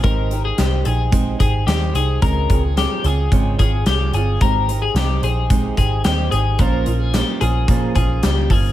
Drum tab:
HH |xxxxxxxx|xxxxxxxx|xxxxxxxx|xxxxxxxo|
SD |--o---o-|--o---o-|--o---o-|--o---o-|
BD |o---oo--|oo--oo--|o---oo--|o---oo-o|